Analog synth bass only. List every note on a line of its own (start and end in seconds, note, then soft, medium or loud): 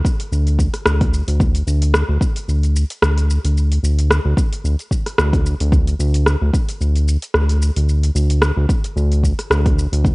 0.32 0.68 D2 loud
0.86 1.22 D2 loud
1.27 1.62 D2 medium
1.67 2.03 D2 loud
2.09 2.18 D2 loud
2.48 2.84 D2 loud
3.02 3.38 D2 loud
3.44 3.79 D2 medium
3.83 4.19 D2 medium
4.25 4.34 D2 loud
4.64 4.76 D2 medium
5.18 5.55 D2 medium
5.61 5.95 D2 loud
5.99 6.36 D2 medium
6.41 6.50 D2 loud
6.80 7.17 D2 loud
7.34 7.71 D2 loud
7.76 8.11 D2 medium
8.15 8.52 D2 loud
8.57 8.66 D2 loud
8.96 9.33 D2 loud
9.50 9.87 D2 loud
9.92 10.15 D2 medium